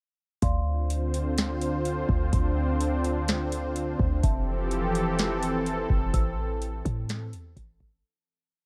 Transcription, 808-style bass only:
0.42 2.05 D2 loud
2.09 2.32 D2 loud
2.33 3.96 D2 loud
3.99 4.22 D2 loud
4.23 5.86 F1 loud
5.90 6.13 F1 loud
6.14 6.82 A1 loud
6.85 7.35 A2 loud
7.33 7.56 E2 loud
7.56 7.79 A1 loud
7.80 8.03 A1 loud

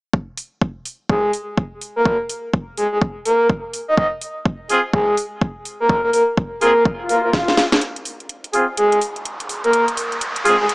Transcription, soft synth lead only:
1.09 1.31 G#4 medium
1.96 2.17 A#4 medium
2.77 2.87 G#4 medium
2.92 2.98 G#4 medium
3.25 3.47 A#4 medium
3.88 3.94 D#5 medium
3.98 4.07 D#5 medium
4.93 5.15 G#4 medium
5.80 6.01 A#4 medium
6.04 6.10 A#4 medium
6.13 6.23 A#4 medium
6.61 6.83 A#4 medium
7.09 7.19 A#4 medium
7.24 7.30 A#4 medium
8.77 8.99 G#4 medium
9.64 9.85 A#4 loud
10.45 10.55 G#4 medium
10.60 10.66 G#4 medium

